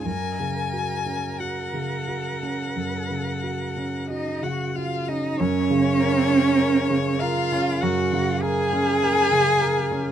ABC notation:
X:1
M:4/4
L:1/16
Q:1/4=49
K:F#
V:1 name="Violin"
g4 f8 d f e d | c6 e2 f2 g6 |]
V:2 name="Cello"
A12 D F E D | C6 E2 F2 G6 |]
V:3 name="Grand piano"
F,, C, F C F C, F C F,, C, F C F C, F C | F,, C, A C A C, A C F,, C, A C A C, A C |]